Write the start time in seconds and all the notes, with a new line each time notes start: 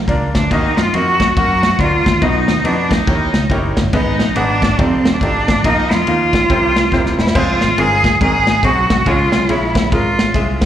0.08 C#2 A#3 D4 F4 A#4 D5, kick, ride
0.35 D2 D4, kick, snare, ride
0.51 D#2 D#3 A#3 D#4 F#4 A#4 D#5, kick, ride
0.77 F#2 F4, snare, ride
0.94 F2 A#3 D#4 F#4 A#4 D#5, ride
1.20 kick, snare, ride
1.37 F#2 A#3 D#4 F#4 A#4 F#5, kick, ride
1.63 snare, ride
1.79 D2 A#3 D#4 F4 F#4 A#4 D5, kick, ride
2.06 D#2, kick, snare, ride
2.22 B1 B2 B3 D#4 F#4 B4 D#5, kick, ride
2.48 D#2, snare, ride
2.64 F2 B3 D4 D#4 F#4 B4 D#5, ride
2.91 D#4, kick, snare, ride
3.07 D#2 D#3 D#4 E4 G4 A#4 C#5, kick, ride
3.34 C#2, snare, ride
3.50 F#1 D#4 E4 G4 A#4 C#5, kick, ride
3.77 G1, kick, snare, ride
3.93 G#1 G#2 B3 D#4 G#4 B4 D#5, kick, ride
4.19 A#1, snare, ride
4.36 G#1 B3 D4 D#4 G#4 B4 F#5, ride
4.62 kick, snare, ride
4.79 F1 C4 D#4 F4 G4 A4 D5, kick, ride
5.05 snare, ride
5.14 D4
5.21 G#1 D4 D#4 F4 G4 A4 D5, kick, ride
5.48 A1, kick, snare, ride
5.64 A#1 A#2 A#3 D#4 F4 A#4 D#5, kick, ride
5.91 F2 F4, snare, ride
6.07 D#2 A#3 D#4 F4 A#4 F5, ride
6.33 kick, snare, ride
6.50 C2 C3 C4 E4 G4 A#4 C5, kick, ride
6.76 snare, ride
6.92 D#1 C4 E4 G4 A#4 C5, kick, snare
7.06 snare
7.19 E1 E4, snare
7.27 snare
7.35 F1 G#3 C4 F4 G#4 C5, kick, crash
7.61 G#1, snare, ride
7.78 G1 G#3 C4 F4 G#4 A#4, ride
8.04 kick, snare, ride
8.21 G#1 G#2 C4 D#4 F#4 G#4 A#4, kick, ride
8.47 snare, ride
8.63 B1 C4 D#4 F#4 G#4 C5, kick, ride
8.90 C2, kick, snare, ride
9.06 C#2 C#3 G#3 C#4 F4 G#4 C#5, kick, ride
9.32 C2, snare, ride
9.49 A#1 G#3 C#4 E4 F4 G#4 C#5, ride
9.75 kick, snare, ride
9.92 G#1 G#3 C#4 F4 G#4 A#4, kick, ride
10.19 snare, ride
10.34 C2 G#3 C#4 F4 G#4 E5, kick, ride
10.61 kick, snare, ride